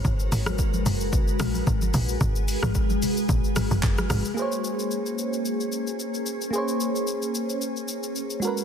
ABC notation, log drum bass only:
X:1
M:4/4
L:1/16
Q:"Swing 16ths" 1/4=111
K:Bbphr
V:1 name="Log drum bass" clef=bass
A,,,2 A,,,4 G,,,4 B,,,2 A,,,2 B,,,2 | A,,,3 A,,,3 z2 B,,, z A,,, G,,, G,,, z A,,, z | z16 | z16 |]